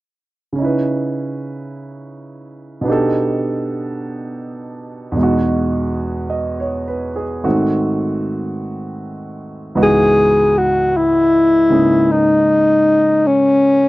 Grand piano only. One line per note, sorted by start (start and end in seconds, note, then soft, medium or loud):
0.53 2.86 C#3 soft
0.53 2.87 C#4 soft
0.58 2.86 D#4 soft
0.58 2.90 E4 soft
0.65 2.92 B4 soft
2.81 5.13 B2 soft
2.81 5.14 B3 soft
2.85 5.15 D4 soft
2.85 5.16 D#4 soft
2.89 5.17 G4 soft
2.89 5.18 A4 soft
5.12 7.43 E2 soft
5.12 7.45 B2 soft
5.17 7.46 G#3 soft
5.17 7.47 D#4 soft
5.23 7.43 F#4 soft
6.30 6.83 D#5 soft
6.60 7.08 C#5 soft
6.88 7.23 B4 soft
7.16 7.56 G#4 soft
7.44 9.74 G#2 soft
7.44 9.77 D#3 soft
7.44 9.77 A3 soft
7.44 9.78 C4 soft
7.44 9.76 F#4 soft
9.75 13.88 C#2 soft
9.75 11.68 G#2 soft
9.75 13.88 E3 soft
9.75 13.88 B3 soft
9.75 13.88 F#4 soft
9.75 13.88 D#5 soft
11.69 13.88 G#2 soft
11.69 13.88 C#3 soft
11.69 13.88 A#3 soft
11.69 13.88 C#4 soft
11.69 13.88 G#4 soft